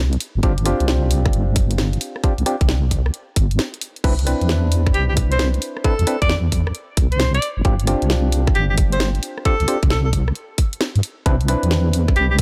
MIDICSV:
0, 0, Header, 1, 5, 480
1, 0, Start_track
1, 0, Tempo, 451128
1, 460, Time_signature, 4, 2, 24, 8
1, 13214, End_track
2, 0, Start_track
2, 0, Title_t, "Alto saxophone"
2, 0, Program_c, 0, 65
2, 5257, Note_on_c, 0, 67, 82
2, 5359, Note_off_c, 0, 67, 0
2, 5416, Note_on_c, 0, 67, 73
2, 5469, Note_off_c, 0, 67, 0
2, 5655, Note_on_c, 0, 72, 86
2, 5809, Note_off_c, 0, 72, 0
2, 6217, Note_on_c, 0, 69, 90
2, 6584, Note_off_c, 0, 69, 0
2, 6615, Note_on_c, 0, 74, 91
2, 6769, Note_off_c, 0, 74, 0
2, 7575, Note_on_c, 0, 72, 85
2, 7785, Note_off_c, 0, 72, 0
2, 7816, Note_on_c, 0, 74, 87
2, 7962, Note_off_c, 0, 74, 0
2, 9098, Note_on_c, 0, 67, 86
2, 9199, Note_off_c, 0, 67, 0
2, 9256, Note_on_c, 0, 67, 78
2, 9309, Note_off_c, 0, 67, 0
2, 9496, Note_on_c, 0, 72, 86
2, 9649, Note_off_c, 0, 72, 0
2, 10062, Note_on_c, 0, 69, 96
2, 10427, Note_off_c, 0, 69, 0
2, 10539, Note_on_c, 0, 69, 86
2, 10640, Note_off_c, 0, 69, 0
2, 10696, Note_on_c, 0, 69, 75
2, 10749, Note_off_c, 0, 69, 0
2, 12940, Note_on_c, 0, 67, 84
2, 13040, Note_off_c, 0, 67, 0
2, 13096, Note_on_c, 0, 67, 75
2, 13149, Note_off_c, 0, 67, 0
2, 13214, End_track
3, 0, Start_track
3, 0, Title_t, "Synth stab"
3, 0, Program_c, 1, 62
3, 458, Note_on_c, 1, 60, 91
3, 458, Note_on_c, 1, 65, 85
3, 459, Note_on_c, 1, 62, 86
3, 459, Note_on_c, 1, 67, 100
3, 559, Note_off_c, 1, 60, 0
3, 559, Note_off_c, 1, 65, 0
3, 560, Note_off_c, 1, 62, 0
3, 560, Note_off_c, 1, 67, 0
3, 698, Note_on_c, 1, 65, 69
3, 699, Note_on_c, 1, 60, 74
3, 699, Note_on_c, 1, 62, 63
3, 699, Note_on_c, 1, 67, 78
3, 2359, Note_off_c, 1, 60, 0
3, 2359, Note_off_c, 1, 62, 0
3, 2359, Note_off_c, 1, 65, 0
3, 2359, Note_off_c, 1, 67, 0
3, 2378, Note_on_c, 1, 60, 69
3, 2378, Note_on_c, 1, 65, 68
3, 2378, Note_on_c, 1, 67, 80
3, 2379, Note_on_c, 1, 62, 67
3, 2479, Note_off_c, 1, 60, 0
3, 2479, Note_off_c, 1, 62, 0
3, 2479, Note_off_c, 1, 65, 0
3, 2479, Note_off_c, 1, 67, 0
3, 2618, Note_on_c, 1, 60, 79
3, 2618, Note_on_c, 1, 62, 68
3, 2618, Note_on_c, 1, 65, 69
3, 2618, Note_on_c, 1, 67, 83
3, 2719, Note_off_c, 1, 60, 0
3, 2719, Note_off_c, 1, 62, 0
3, 2719, Note_off_c, 1, 65, 0
3, 2719, Note_off_c, 1, 67, 0
3, 4299, Note_on_c, 1, 60, 94
3, 4299, Note_on_c, 1, 62, 81
3, 4299, Note_on_c, 1, 64, 85
3, 4299, Note_on_c, 1, 71, 102
3, 4399, Note_off_c, 1, 60, 0
3, 4400, Note_off_c, 1, 62, 0
3, 4400, Note_off_c, 1, 64, 0
3, 4400, Note_off_c, 1, 71, 0
3, 4538, Note_on_c, 1, 62, 68
3, 4539, Note_on_c, 1, 60, 73
3, 4539, Note_on_c, 1, 64, 67
3, 4539, Note_on_c, 1, 71, 81
3, 6199, Note_off_c, 1, 60, 0
3, 6199, Note_off_c, 1, 62, 0
3, 6199, Note_off_c, 1, 64, 0
3, 6199, Note_off_c, 1, 71, 0
3, 6219, Note_on_c, 1, 60, 72
3, 6219, Note_on_c, 1, 62, 69
3, 6219, Note_on_c, 1, 64, 68
3, 6219, Note_on_c, 1, 71, 81
3, 6319, Note_off_c, 1, 60, 0
3, 6319, Note_off_c, 1, 62, 0
3, 6320, Note_off_c, 1, 64, 0
3, 6320, Note_off_c, 1, 71, 0
3, 6458, Note_on_c, 1, 60, 77
3, 6458, Note_on_c, 1, 64, 71
3, 6459, Note_on_c, 1, 62, 70
3, 6459, Note_on_c, 1, 71, 82
3, 6559, Note_off_c, 1, 60, 0
3, 6559, Note_off_c, 1, 62, 0
3, 6559, Note_off_c, 1, 64, 0
3, 6559, Note_off_c, 1, 71, 0
3, 8138, Note_on_c, 1, 62, 84
3, 8138, Note_on_c, 1, 65, 85
3, 8138, Note_on_c, 1, 67, 107
3, 8139, Note_on_c, 1, 60, 90
3, 8239, Note_off_c, 1, 60, 0
3, 8239, Note_off_c, 1, 62, 0
3, 8239, Note_off_c, 1, 65, 0
3, 8239, Note_off_c, 1, 67, 0
3, 8379, Note_on_c, 1, 60, 72
3, 8379, Note_on_c, 1, 62, 68
3, 8379, Note_on_c, 1, 65, 63
3, 8379, Note_on_c, 1, 67, 78
3, 10039, Note_off_c, 1, 60, 0
3, 10039, Note_off_c, 1, 62, 0
3, 10039, Note_off_c, 1, 65, 0
3, 10039, Note_off_c, 1, 67, 0
3, 10059, Note_on_c, 1, 60, 75
3, 10059, Note_on_c, 1, 62, 66
3, 10059, Note_on_c, 1, 65, 65
3, 10059, Note_on_c, 1, 67, 82
3, 10159, Note_off_c, 1, 62, 0
3, 10159, Note_off_c, 1, 67, 0
3, 10160, Note_off_c, 1, 60, 0
3, 10160, Note_off_c, 1, 65, 0
3, 10298, Note_on_c, 1, 60, 75
3, 10298, Note_on_c, 1, 62, 72
3, 10298, Note_on_c, 1, 65, 70
3, 10298, Note_on_c, 1, 67, 83
3, 10399, Note_off_c, 1, 60, 0
3, 10399, Note_off_c, 1, 62, 0
3, 10399, Note_off_c, 1, 65, 0
3, 10399, Note_off_c, 1, 67, 0
3, 11978, Note_on_c, 1, 71, 100
3, 11979, Note_on_c, 1, 60, 94
3, 11979, Note_on_c, 1, 62, 87
3, 11979, Note_on_c, 1, 64, 84
3, 12079, Note_off_c, 1, 62, 0
3, 12079, Note_off_c, 1, 64, 0
3, 12079, Note_off_c, 1, 71, 0
3, 12080, Note_off_c, 1, 60, 0
3, 12219, Note_on_c, 1, 60, 72
3, 12219, Note_on_c, 1, 62, 67
3, 12219, Note_on_c, 1, 64, 64
3, 12219, Note_on_c, 1, 71, 81
3, 13214, Note_off_c, 1, 60, 0
3, 13214, Note_off_c, 1, 62, 0
3, 13214, Note_off_c, 1, 64, 0
3, 13214, Note_off_c, 1, 71, 0
3, 13214, End_track
4, 0, Start_track
4, 0, Title_t, "Wobble bass"
4, 0, Program_c, 2, 39
4, 0, Note_on_c, 2, 36, 79
4, 182, Note_off_c, 2, 36, 0
4, 376, Note_on_c, 2, 31, 111
4, 436, Note_off_c, 2, 31, 0
4, 459, Note_on_c, 2, 31, 96
4, 787, Note_off_c, 2, 31, 0
4, 855, Note_on_c, 2, 36, 84
4, 1382, Note_off_c, 2, 36, 0
4, 1419, Note_on_c, 2, 31, 78
4, 2103, Note_off_c, 2, 31, 0
4, 2537, Note_on_c, 2, 36, 103
4, 2596, Note_off_c, 2, 36, 0
4, 2777, Note_on_c, 2, 36, 85
4, 3303, Note_off_c, 2, 36, 0
4, 3580, Note_on_c, 2, 31, 79
4, 3819, Note_off_c, 2, 31, 0
4, 4299, Note_on_c, 2, 36, 92
4, 4627, Note_off_c, 2, 36, 0
4, 4696, Note_on_c, 2, 40, 81
4, 5222, Note_off_c, 2, 40, 0
4, 5259, Note_on_c, 2, 36, 73
4, 5943, Note_off_c, 2, 36, 0
4, 6376, Note_on_c, 2, 40, 102
4, 6436, Note_off_c, 2, 40, 0
4, 6617, Note_on_c, 2, 40, 82
4, 7143, Note_off_c, 2, 40, 0
4, 7419, Note_on_c, 2, 36, 84
4, 7863, Note_off_c, 2, 36, 0
4, 8056, Note_on_c, 2, 31, 109
4, 8116, Note_off_c, 2, 31, 0
4, 8139, Note_on_c, 2, 31, 95
4, 8467, Note_off_c, 2, 31, 0
4, 8537, Note_on_c, 2, 36, 78
4, 9063, Note_off_c, 2, 36, 0
4, 9100, Note_on_c, 2, 31, 73
4, 9783, Note_off_c, 2, 31, 0
4, 10217, Note_on_c, 2, 36, 100
4, 10276, Note_off_c, 2, 36, 0
4, 10457, Note_on_c, 2, 36, 84
4, 10983, Note_off_c, 2, 36, 0
4, 11657, Note_on_c, 2, 43, 93
4, 11716, Note_off_c, 2, 43, 0
4, 11979, Note_on_c, 2, 36, 98
4, 12307, Note_off_c, 2, 36, 0
4, 12376, Note_on_c, 2, 40, 86
4, 12902, Note_off_c, 2, 40, 0
4, 12939, Note_on_c, 2, 36, 76
4, 13214, Note_off_c, 2, 36, 0
4, 13214, End_track
5, 0, Start_track
5, 0, Title_t, "Drums"
5, 135, Note_on_c, 9, 42, 53
5, 218, Note_on_c, 9, 46, 106
5, 242, Note_off_c, 9, 42, 0
5, 324, Note_off_c, 9, 46, 0
5, 458, Note_on_c, 9, 42, 66
5, 459, Note_on_c, 9, 36, 107
5, 564, Note_off_c, 9, 42, 0
5, 565, Note_off_c, 9, 36, 0
5, 615, Note_on_c, 9, 42, 63
5, 697, Note_on_c, 9, 37, 59
5, 697, Note_on_c, 9, 46, 94
5, 722, Note_off_c, 9, 42, 0
5, 804, Note_off_c, 9, 37, 0
5, 804, Note_off_c, 9, 46, 0
5, 855, Note_on_c, 9, 42, 66
5, 937, Note_on_c, 9, 38, 101
5, 962, Note_off_c, 9, 42, 0
5, 1043, Note_off_c, 9, 38, 0
5, 1178, Note_on_c, 9, 46, 102
5, 1284, Note_off_c, 9, 46, 0
5, 1335, Note_on_c, 9, 37, 63
5, 1337, Note_on_c, 9, 36, 94
5, 1417, Note_on_c, 9, 42, 63
5, 1441, Note_off_c, 9, 37, 0
5, 1443, Note_off_c, 9, 36, 0
5, 1524, Note_off_c, 9, 42, 0
5, 1658, Note_on_c, 9, 46, 97
5, 1659, Note_on_c, 9, 36, 99
5, 1764, Note_off_c, 9, 46, 0
5, 1765, Note_off_c, 9, 36, 0
5, 1816, Note_on_c, 9, 42, 67
5, 1898, Note_on_c, 9, 38, 106
5, 1922, Note_off_c, 9, 42, 0
5, 2004, Note_off_c, 9, 38, 0
5, 2056, Note_on_c, 9, 42, 55
5, 2138, Note_on_c, 9, 46, 105
5, 2163, Note_off_c, 9, 42, 0
5, 2245, Note_off_c, 9, 46, 0
5, 2296, Note_on_c, 9, 37, 54
5, 2378, Note_on_c, 9, 42, 64
5, 2379, Note_on_c, 9, 36, 110
5, 2403, Note_off_c, 9, 37, 0
5, 2485, Note_off_c, 9, 42, 0
5, 2486, Note_off_c, 9, 36, 0
5, 2536, Note_on_c, 9, 42, 62
5, 2618, Note_on_c, 9, 37, 59
5, 2618, Note_on_c, 9, 46, 100
5, 2642, Note_off_c, 9, 42, 0
5, 2725, Note_off_c, 9, 37, 0
5, 2725, Note_off_c, 9, 46, 0
5, 2776, Note_on_c, 9, 42, 62
5, 2777, Note_on_c, 9, 36, 99
5, 2858, Note_on_c, 9, 38, 108
5, 2882, Note_off_c, 9, 42, 0
5, 2883, Note_off_c, 9, 36, 0
5, 2965, Note_off_c, 9, 38, 0
5, 3098, Note_on_c, 9, 46, 102
5, 3099, Note_on_c, 9, 36, 58
5, 3204, Note_off_c, 9, 46, 0
5, 3206, Note_off_c, 9, 36, 0
5, 3255, Note_on_c, 9, 37, 66
5, 3338, Note_on_c, 9, 42, 63
5, 3362, Note_off_c, 9, 37, 0
5, 3445, Note_off_c, 9, 42, 0
5, 3578, Note_on_c, 9, 46, 104
5, 3580, Note_on_c, 9, 36, 98
5, 3684, Note_off_c, 9, 46, 0
5, 3686, Note_off_c, 9, 36, 0
5, 3737, Note_on_c, 9, 42, 63
5, 3819, Note_on_c, 9, 38, 113
5, 3843, Note_off_c, 9, 42, 0
5, 3925, Note_off_c, 9, 38, 0
5, 3977, Note_on_c, 9, 42, 54
5, 4059, Note_on_c, 9, 46, 103
5, 4084, Note_off_c, 9, 42, 0
5, 4165, Note_off_c, 9, 46, 0
5, 4217, Note_on_c, 9, 42, 38
5, 4299, Note_on_c, 9, 36, 116
5, 4300, Note_off_c, 9, 42, 0
5, 4300, Note_on_c, 9, 42, 64
5, 4300, Note_on_c, 9, 49, 74
5, 4406, Note_off_c, 9, 36, 0
5, 4406, Note_off_c, 9, 42, 0
5, 4406, Note_off_c, 9, 49, 0
5, 4458, Note_on_c, 9, 42, 63
5, 4540, Note_on_c, 9, 37, 63
5, 4540, Note_on_c, 9, 46, 103
5, 4564, Note_off_c, 9, 42, 0
5, 4646, Note_off_c, 9, 37, 0
5, 4646, Note_off_c, 9, 46, 0
5, 4697, Note_on_c, 9, 42, 63
5, 4779, Note_on_c, 9, 38, 109
5, 4804, Note_off_c, 9, 42, 0
5, 4886, Note_off_c, 9, 38, 0
5, 5019, Note_on_c, 9, 46, 105
5, 5125, Note_off_c, 9, 46, 0
5, 5176, Note_on_c, 9, 37, 70
5, 5177, Note_on_c, 9, 36, 101
5, 5259, Note_on_c, 9, 42, 62
5, 5282, Note_off_c, 9, 37, 0
5, 5283, Note_off_c, 9, 36, 0
5, 5365, Note_off_c, 9, 42, 0
5, 5498, Note_on_c, 9, 46, 102
5, 5499, Note_on_c, 9, 36, 99
5, 5605, Note_off_c, 9, 46, 0
5, 5606, Note_off_c, 9, 36, 0
5, 5656, Note_on_c, 9, 42, 64
5, 5738, Note_on_c, 9, 38, 108
5, 5763, Note_off_c, 9, 42, 0
5, 5845, Note_off_c, 9, 38, 0
5, 5896, Note_on_c, 9, 42, 51
5, 5978, Note_on_c, 9, 46, 108
5, 6002, Note_off_c, 9, 42, 0
5, 6084, Note_off_c, 9, 46, 0
5, 6135, Note_on_c, 9, 37, 58
5, 6218, Note_on_c, 9, 42, 61
5, 6219, Note_on_c, 9, 36, 125
5, 6242, Note_off_c, 9, 37, 0
5, 6324, Note_off_c, 9, 42, 0
5, 6326, Note_off_c, 9, 36, 0
5, 6375, Note_on_c, 9, 42, 59
5, 6458, Note_on_c, 9, 37, 66
5, 6458, Note_on_c, 9, 46, 97
5, 6481, Note_off_c, 9, 42, 0
5, 6564, Note_off_c, 9, 37, 0
5, 6564, Note_off_c, 9, 46, 0
5, 6615, Note_on_c, 9, 42, 60
5, 6617, Note_on_c, 9, 36, 102
5, 6698, Note_on_c, 9, 38, 112
5, 6722, Note_off_c, 9, 42, 0
5, 6723, Note_off_c, 9, 36, 0
5, 6804, Note_off_c, 9, 38, 0
5, 6938, Note_on_c, 9, 46, 100
5, 6939, Note_on_c, 9, 36, 66
5, 7045, Note_off_c, 9, 46, 0
5, 7046, Note_off_c, 9, 36, 0
5, 7096, Note_on_c, 9, 37, 73
5, 7178, Note_on_c, 9, 42, 61
5, 7202, Note_off_c, 9, 37, 0
5, 7284, Note_off_c, 9, 42, 0
5, 7417, Note_on_c, 9, 46, 97
5, 7419, Note_on_c, 9, 36, 107
5, 7524, Note_off_c, 9, 46, 0
5, 7525, Note_off_c, 9, 36, 0
5, 7575, Note_on_c, 9, 42, 60
5, 7657, Note_on_c, 9, 38, 124
5, 7682, Note_off_c, 9, 42, 0
5, 7763, Note_off_c, 9, 38, 0
5, 7814, Note_on_c, 9, 42, 48
5, 7897, Note_on_c, 9, 46, 105
5, 7921, Note_off_c, 9, 42, 0
5, 8003, Note_off_c, 9, 46, 0
5, 8137, Note_on_c, 9, 42, 61
5, 8139, Note_on_c, 9, 36, 127
5, 8243, Note_off_c, 9, 42, 0
5, 8245, Note_off_c, 9, 36, 0
5, 8294, Note_on_c, 9, 42, 56
5, 8377, Note_on_c, 9, 37, 65
5, 8377, Note_on_c, 9, 46, 92
5, 8401, Note_off_c, 9, 42, 0
5, 8483, Note_off_c, 9, 37, 0
5, 8483, Note_off_c, 9, 46, 0
5, 8534, Note_on_c, 9, 42, 60
5, 8617, Note_on_c, 9, 38, 115
5, 8641, Note_off_c, 9, 42, 0
5, 8723, Note_off_c, 9, 38, 0
5, 8857, Note_on_c, 9, 46, 99
5, 8963, Note_off_c, 9, 46, 0
5, 9015, Note_on_c, 9, 37, 69
5, 9017, Note_on_c, 9, 36, 109
5, 9098, Note_on_c, 9, 42, 56
5, 9122, Note_off_c, 9, 37, 0
5, 9123, Note_off_c, 9, 36, 0
5, 9204, Note_off_c, 9, 42, 0
5, 9337, Note_on_c, 9, 46, 95
5, 9339, Note_on_c, 9, 36, 105
5, 9444, Note_off_c, 9, 46, 0
5, 9446, Note_off_c, 9, 36, 0
5, 9496, Note_on_c, 9, 42, 62
5, 9577, Note_on_c, 9, 38, 120
5, 9602, Note_off_c, 9, 42, 0
5, 9684, Note_off_c, 9, 38, 0
5, 9735, Note_on_c, 9, 42, 48
5, 9818, Note_on_c, 9, 46, 96
5, 9841, Note_off_c, 9, 42, 0
5, 9924, Note_off_c, 9, 46, 0
5, 9976, Note_on_c, 9, 37, 58
5, 10057, Note_on_c, 9, 42, 62
5, 10059, Note_on_c, 9, 36, 121
5, 10082, Note_off_c, 9, 37, 0
5, 10164, Note_off_c, 9, 42, 0
5, 10166, Note_off_c, 9, 36, 0
5, 10216, Note_on_c, 9, 42, 61
5, 10298, Note_on_c, 9, 37, 61
5, 10298, Note_on_c, 9, 46, 99
5, 10322, Note_off_c, 9, 42, 0
5, 10404, Note_off_c, 9, 37, 0
5, 10404, Note_off_c, 9, 46, 0
5, 10456, Note_on_c, 9, 42, 60
5, 10457, Note_on_c, 9, 36, 110
5, 10538, Note_on_c, 9, 38, 116
5, 10562, Note_off_c, 9, 42, 0
5, 10563, Note_off_c, 9, 36, 0
5, 10644, Note_off_c, 9, 38, 0
5, 10778, Note_on_c, 9, 46, 94
5, 10779, Note_on_c, 9, 36, 62
5, 10885, Note_off_c, 9, 46, 0
5, 10886, Note_off_c, 9, 36, 0
5, 10936, Note_on_c, 9, 37, 66
5, 11017, Note_on_c, 9, 42, 62
5, 11043, Note_off_c, 9, 37, 0
5, 11124, Note_off_c, 9, 42, 0
5, 11257, Note_on_c, 9, 46, 94
5, 11259, Note_on_c, 9, 36, 107
5, 11364, Note_off_c, 9, 46, 0
5, 11366, Note_off_c, 9, 36, 0
5, 11416, Note_on_c, 9, 42, 60
5, 11498, Note_on_c, 9, 38, 115
5, 11522, Note_off_c, 9, 42, 0
5, 11604, Note_off_c, 9, 38, 0
5, 11656, Note_on_c, 9, 42, 49
5, 11738, Note_on_c, 9, 46, 94
5, 11763, Note_off_c, 9, 42, 0
5, 11845, Note_off_c, 9, 46, 0
5, 11979, Note_on_c, 9, 36, 124
5, 11979, Note_on_c, 9, 42, 66
5, 12085, Note_off_c, 9, 42, 0
5, 12086, Note_off_c, 9, 36, 0
5, 12137, Note_on_c, 9, 42, 61
5, 12219, Note_on_c, 9, 37, 60
5, 12219, Note_on_c, 9, 46, 95
5, 12243, Note_off_c, 9, 42, 0
5, 12325, Note_off_c, 9, 37, 0
5, 12325, Note_off_c, 9, 46, 0
5, 12376, Note_on_c, 9, 42, 60
5, 12458, Note_on_c, 9, 38, 113
5, 12483, Note_off_c, 9, 42, 0
5, 12565, Note_off_c, 9, 38, 0
5, 12698, Note_on_c, 9, 46, 98
5, 12805, Note_off_c, 9, 46, 0
5, 12856, Note_on_c, 9, 37, 65
5, 12857, Note_on_c, 9, 36, 99
5, 12938, Note_on_c, 9, 42, 62
5, 12962, Note_off_c, 9, 37, 0
5, 12964, Note_off_c, 9, 36, 0
5, 13044, Note_off_c, 9, 42, 0
5, 13178, Note_on_c, 9, 46, 98
5, 13180, Note_on_c, 9, 36, 102
5, 13214, Note_off_c, 9, 36, 0
5, 13214, Note_off_c, 9, 46, 0
5, 13214, End_track
0, 0, End_of_file